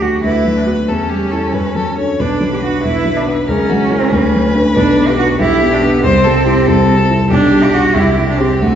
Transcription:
0.00 0.22 D2 medium
0.00 0.15 F#3 soft
0.00 0.23 F#4 medium
0.00 0.37 F#4 soft
0.23 0.87 D2 soft
0.23 0.55 E4 medium
0.23 0.90 B4 medium
0.45 0.80 F#3 soft
0.57 0.61 D4 medium
0.67 0.75 B3 medium
0.67 0.88 F#4 soft
0.88 1.52 E2 medium
0.88 1.96 C#4 medium
0.88 1.11 A4 medium
1.10 1.45 G3 soft
1.10 1.33 G4 medium
1.32 1.52 E4 soft
1.32 1.55 A4 medium
1.32 1.52 A4 soft
1.53 2.18 F#2 medium
1.53 1.76 B4 medium
1.75 2.11 F#3 soft
1.75 1.97 A4 medium
1.98 2.17 D4 soft
1.98 2.17 A4 soft
1.98 2.21 C#5 medium
2.19 2.83 B1 soft
2.19 2.50 D4 medium
2.19 3.49 B4 medium
2.40 2.75 F#3 soft
2.52 2.56 G4 medium
2.62 2.97 D4 soft
2.62 2.83 F#4 medium
2.83 3.46 B1 soft
2.83 3.18 E4 medium
3.05 3.39 F#3 soft
3.17 3.26 D4 medium
3.27 3.35 B3 medium
3.27 3.48 D4 soft
3.48 4.10 C#2 medium
3.48 4.53 C#4 medium
3.48 3.71 A#4 medium
3.69 4.03 F#3 soft
3.69 3.92 F#4 medium
3.90 4.09 E4 soft
3.90 4.10 A#4 soft
3.90 4.14 A#4 medium
4.12 4.74 D2 medium
4.12 5.39 B4 medium
4.34 4.67 F#3 soft
4.55 4.74 D4 medium
4.55 4.74 B4 medium
4.75 5.38 B1 medium
4.75 5.10 D4 medium
4.98 5.31 B3 soft
5.09 5.18 G4 medium
5.18 5.53 D4 medium
5.18 5.26 F#4 medium
5.39 6.02 B1 medium
5.39 5.71 E4 medium
5.39 6.02 G4 medium
5.62 5.95 B3 soft
5.73 5.77 D4 medium
5.83 6.06 B3 medium
5.83 6.04 D4 medium
6.04 6.66 C2 medium
6.04 7.09 C4 loud
6.04 6.26 C5 medium
6.24 6.58 G3 medium
6.24 6.46 A4 medium
6.45 6.79 E4 medium
6.45 6.68 G4 medium
6.66 7.29 C2 medium
6.66 7.30 A4 medium
6.88 7.22 G3 soft
7.10 7.31 E4 medium
7.30 7.93 B1 medium
7.30 7.66 D4 loud
7.30 7.94 G4 medium
7.51 7.86 G3 medium
7.64 7.75 G4 medium
7.73 7.93 D4 soft
7.73 7.96 F#4 medium
7.73 7.94 G4 soft
7.95 8.60 C2 medium
7.95 8.28 E4 medium
7.95 8.63 G4 medium
8.18 8.53 G3 soft
8.28 8.40 D4 medium
8.39 8.61 C4 medium
8.39 8.60 C4 soft
8.39 8.60 G4 soft
8.61 8.75 D2 medium
8.61 8.75 A3 medium
8.61 8.75 F#4 medium

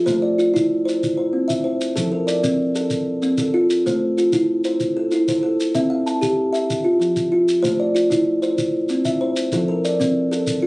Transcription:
0.06 0.38 A3 medium
0.06 0.54 C5 medium
0.06 shekere medium
0.22 0.70 D5 medium
0.38 0.86 F4 medium
0.38 shekere medium
0.54 0.86 E4 medium
0.54 shekere medium
0.85 1.01 C5 medium
0.85 shekere medium
1.03 shekere medium
1.17 1.63 C5 medium
1.33 1.65 C4 medium
1.48 1.96 E5 medium
1.48 shekere medium
1.64 1.96 C5 medium
1.81 shekere medium
1.96 2.27 F3 medium
1.96 2.43 A4 medium
1.96 shekere medium
2.12 2.59 A#4 medium
2.27 2.75 D5 medium
2.27 shekere medium
2.43 2.75 C4 medium
2.43 shekere medium
2.75 3.07 A4 medium
2.75 shekere medium
2.90 shekere medium
3.22 3.54 C4 medium
3.22 shekere soft
3.38 3.86 A4 medium
3.38 shekere medium
3.54 3.85 F4 medium
3.70 shekere medium
3.86 4.17 A3 medium
3.86 4.33 C5 medium
3.86 shekere medium
4.18 4.64 F4 medium
4.18 shekere medium
4.33 4.64 E4 medium
4.33 shekere medium
4.64 4.96 C5 medium
4.64 shekere medium
4.80 shekere medium
4.97 5.42 A4 medium
5.11 5.43 E4 medium
5.11 shekere soft
5.28 5.75 C5 medium
5.28 shekere medium
5.43 5.74 A4 medium
5.60 shekere medium
5.75 6.06 C4 medium
5.75 6.22 E5 medium
5.75 shekere medium
5.90 6.37 F5 medium
6.06 6.53 A5 medium
6.06 shekere medium
6.21 6.53 G4 medium
6.21 shekere medium
6.53 6.69 E5 medium
6.53 shekere medium
6.70 shekere medium
6.84 7.31 F4 medium
7.00 7.31 F3 medium
7.00 shekere soft
7.16 shekere medium
7.32 7.63 F4 medium
7.48 shekere medium
7.63 7.94 A3 medium
7.63 8.10 C5 medium
7.63 shekere medium
7.80 8.26 D5 medium
7.95 8.42 F4 medium
7.95 shekere medium
8.10 8.42 E4 medium
8.10 shekere medium
8.42 8.58 C5 medium
8.42 shekere medium
8.58 shekere medium
8.89 9.21 C4 medium
8.89 shekere soft
9.05 9.52 E5 medium
9.05 shekere medium
9.21 9.52 C5 medium
9.36 shekere medium
9.52 9.84 F3 medium
9.52 10.00 A4 medium
9.52 shekere medium
9.68 10.15 A#4 medium
9.85 10.31 D5 medium
9.85 shekere medium
10.00 10.31 C4 medium
10.00 shekere medium
10.31 10.63 A4 medium
10.31 shekere medium
10.47 shekere medium
10.62 10.67 F4 medium

